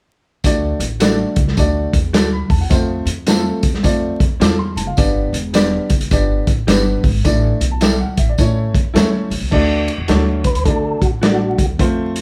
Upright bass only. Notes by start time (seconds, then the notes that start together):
0.44 D2
0.80 A1
1.37 C#2
1.58 D2
1.93 E2
2.14 D2
2.50 E2
2.71 F2
3.05 F2
3.63 E2
3.84 F2
4.20 F2
4.40 E2
4.76 F#1
4.98 G1
5.33 E1
5.90 F#1
6.11 G1
6.47 A1
6.68 G1
7.04 G#1
7.25 A1
7.60 B1
8.18 A1
8.38 A2
8.74 F#2
8.94 E2
9.30 A1
9.41 B1
9.52 D2
9.98 E2
10.09 D2
10.54 D2
10.65 D3
11.02 A1
11.58 D2
11.79 F2